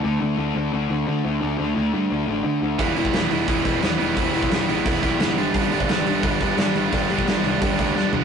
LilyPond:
<<
  \new Staff \with { instrumentName = "Distorted electric guitar" } { \clef bass \time 4/4 \key e \minor \tempo 4 = 174 r1 | r1 | <e g b e'>8 <e g b e'>8 <e g b e'>8 <e g b e'>8 <e g b e'>8 <e g b e'>8 <e g b e'>8 <e g b e'>8 | <e g b e'>8 <e g b e'>8 <e g b e'>8 <e g b e'>8 <e g b e'>8 <e g b e'>8 <e g b e'>8 <g, d g b d'>8 |
<g, d g b d'>8 <g, d g b d'>8 <g, d g b d'>8 <g, d g b d'>8 <g, d g b d'>8 <g, d g b d'>8 <g, d g b d'>8 <g, d g b d'>8 | <g, d g b d'>8 <g, d g b d'>8 <g, d g b d'>8 <g, d g b d'>8 <g, d g b d'>8 <g, d g b d'>8 <g, d g b d'>8 <g, d g b d'>8 | }
  \new Staff \with { instrumentName = "Overdriven electric guitar" } { \clef bass \time 4/4 \key e \minor <d a d'>8 <d a d'>8 <d a d'>8 <d a d'>8 <d a d'>8 <d a d'>8 <d a d'>8 <d a d'>8 | <d a d'>8 <d a d'>8 <d a d'>8 <d a d'>8 <d a d'>8 <d a d'>8 <d a d'>8 <d a d'>8 | <e, b, e>8 <e, b, e>8 <e, b, e>8 <e, b, e>8 <e, b, e>8 <e, b, e>8 <e, b, e>8 <e, b, e>8 | <e, b, e>8 <e, b, e>8 <e, b, e>8 <e, b, e>8 <e, b, e>8 <e, b, e>8 <e, b, e>8 <g, d g>8 |
<g, d g>8 <g, d g>8 <g, d g>8 <g, d g>8 <g, d g>8 <g, d g>8 <g, d g>8 <g, d g>8 | <g, d g>8 <g, d g>8 <g, d g>8 <g, d g>8 <g, d g>8 <g, d g>8 <g, d g>8 <g, d g>8 | }
  \new Staff \with { instrumentName = "Picked electric bass" } { \clef bass \time 4/4 \key e \minor d,8 d,8 d,8 d,8 d,8 d,8 d8 d,8 | d,8 d,8 d,8 g,8 d,8 a,,8 d8 d,8 | e,,8 e,,8 e,,8 e,,8 e,,8 e,,8 e,8 e,,8 | e,,8 e,,8 e,,8 a,,8 e,,8 b,,8 fis,,8 g,,8 |
g,,8 g,,8 g,,8 g,,8 g,,8 g,,8 g,8 g,,8 | g,,8 g,,8 g,,8 c,8 g,,8 d,8 g,8 g,,8 | }
  \new DrumStaff \with { instrumentName = "Drums" } \drummode { \time 4/4 r4 r4 r4 r4 | r4 r4 r4 r4 | <hho bd>8 hho16 bd16 <hho sn>8 hho8 <hho bd>8 <hho bd>8 <hho sn>8 hho8 | <hho bd>8 hho16 bd16 <hho sn>8 hho8 <hho bd>8 <hho bd>8 <hho sn>8 hho8 |
<hho bd>8 hho16 bd16 <hho sn>8 hho8 <hho bd>8 <hho bd>8 <hho sn>8 hho8 | <hho bd>8 hho16 bd16 <hho sn>8 hho8 <hho bd>8 <hho bd>8 sn8 tomfh8 | }
>>